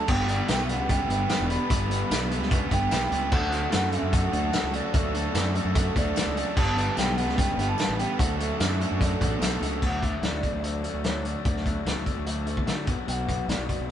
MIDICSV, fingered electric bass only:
0, 0, Header, 1, 2, 480
1, 0, Start_track
1, 0, Key_signature, 2, "major"
1, 0, Tempo, 406229
1, 103, Time_signature, 4, 2, 24, 8
1, 16436, End_track
2, 0, Start_track
2, 0, Title_t, "Fingered electric bass"
2, 0, Program_c, 0, 33
2, 96, Note_on_c, 0, 31, 102
2, 473, Note_off_c, 0, 31, 0
2, 580, Note_on_c, 0, 35, 107
2, 934, Note_off_c, 0, 35, 0
2, 934, Note_on_c, 0, 37, 87
2, 1216, Note_off_c, 0, 37, 0
2, 1285, Note_on_c, 0, 31, 96
2, 1477, Note_off_c, 0, 31, 0
2, 1651, Note_on_c, 0, 28, 81
2, 1840, Note_off_c, 0, 28, 0
2, 2013, Note_on_c, 0, 31, 100
2, 2388, Note_off_c, 0, 31, 0
2, 2490, Note_on_c, 0, 35, 96
2, 2837, Note_off_c, 0, 35, 0
2, 2837, Note_on_c, 0, 37, 88
2, 3124, Note_off_c, 0, 37, 0
2, 3203, Note_on_c, 0, 31, 90
2, 3393, Note_off_c, 0, 31, 0
2, 3446, Note_on_c, 0, 35, 75
2, 3663, Note_off_c, 0, 35, 0
2, 3683, Note_on_c, 0, 37, 79
2, 3901, Note_off_c, 0, 37, 0
2, 3921, Note_on_c, 0, 38, 101
2, 4298, Note_off_c, 0, 38, 0
2, 4412, Note_on_c, 0, 42, 104
2, 4690, Note_off_c, 0, 42, 0
2, 4756, Note_on_c, 0, 42, 82
2, 5041, Note_off_c, 0, 42, 0
2, 5121, Note_on_c, 0, 38, 97
2, 5310, Note_off_c, 0, 38, 0
2, 5476, Note_on_c, 0, 37, 87
2, 5666, Note_off_c, 0, 37, 0
2, 5835, Note_on_c, 0, 38, 101
2, 6212, Note_off_c, 0, 38, 0
2, 6313, Note_on_c, 0, 42, 102
2, 6597, Note_off_c, 0, 42, 0
2, 6672, Note_on_c, 0, 42, 80
2, 6957, Note_off_c, 0, 42, 0
2, 7040, Note_on_c, 0, 38, 100
2, 7228, Note_off_c, 0, 38, 0
2, 7404, Note_on_c, 0, 37, 84
2, 7590, Note_off_c, 0, 37, 0
2, 7760, Note_on_c, 0, 31, 105
2, 8134, Note_off_c, 0, 31, 0
2, 8245, Note_on_c, 0, 35, 99
2, 8601, Note_off_c, 0, 35, 0
2, 8601, Note_on_c, 0, 37, 82
2, 8881, Note_off_c, 0, 37, 0
2, 8948, Note_on_c, 0, 31, 99
2, 9139, Note_off_c, 0, 31, 0
2, 9314, Note_on_c, 0, 33, 78
2, 9503, Note_off_c, 0, 33, 0
2, 9681, Note_on_c, 0, 38, 102
2, 10055, Note_off_c, 0, 38, 0
2, 10163, Note_on_c, 0, 42, 105
2, 10443, Note_off_c, 0, 42, 0
2, 10525, Note_on_c, 0, 42, 88
2, 10804, Note_off_c, 0, 42, 0
2, 10882, Note_on_c, 0, 33, 84
2, 11097, Note_off_c, 0, 33, 0
2, 11115, Note_on_c, 0, 35, 82
2, 11333, Note_off_c, 0, 35, 0
2, 11361, Note_on_c, 0, 37, 76
2, 11577, Note_off_c, 0, 37, 0
2, 11606, Note_on_c, 0, 38, 91
2, 11980, Note_off_c, 0, 38, 0
2, 12075, Note_on_c, 0, 38, 93
2, 12172, Note_off_c, 0, 38, 0
2, 12199, Note_on_c, 0, 38, 68
2, 12294, Note_off_c, 0, 38, 0
2, 12446, Note_on_c, 0, 38, 72
2, 12822, Note_off_c, 0, 38, 0
2, 12922, Note_on_c, 0, 38, 72
2, 13394, Note_off_c, 0, 38, 0
2, 13532, Note_on_c, 0, 38, 95
2, 13907, Note_off_c, 0, 38, 0
2, 14005, Note_on_c, 0, 37, 84
2, 14101, Note_off_c, 0, 37, 0
2, 14127, Note_on_c, 0, 38, 66
2, 14223, Note_off_c, 0, 38, 0
2, 14376, Note_on_c, 0, 38, 75
2, 14845, Note_off_c, 0, 38, 0
2, 14973, Note_on_c, 0, 50, 71
2, 15162, Note_off_c, 0, 50, 0
2, 15211, Note_on_c, 0, 35, 77
2, 15307, Note_off_c, 0, 35, 0
2, 15453, Note_on_c, 0, 35, 93
2, 15830, Note_off_c, 0, 35, 0
2, 15930, Note_on_c, 0, 35, 94
2, 16027, Note_off_c, 0, 35, 0
2, 16048, Note_on_c, 0, 35, 71
2, 16146, Note_off_c, 0, 35, 0
2, 16302, Note_on_c, 0, 35, 77
2, 16436, Note_off_c, 0, 35, 0
2, 16436, End_track
0, 0, End_of_file